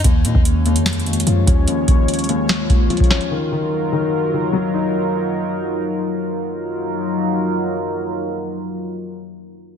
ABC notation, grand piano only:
X:1
M:4/4
L:1/8
Q:1/4=147
K:Ebm
V:1 name="Grand piano" clef=bass
E,, E,,2 E,,2 E,, F, D | E,, E,,2 E,,2 E,, F, D | E, E,2 E,2 E, G, E- | E4 z4 |
z8 | z8 |]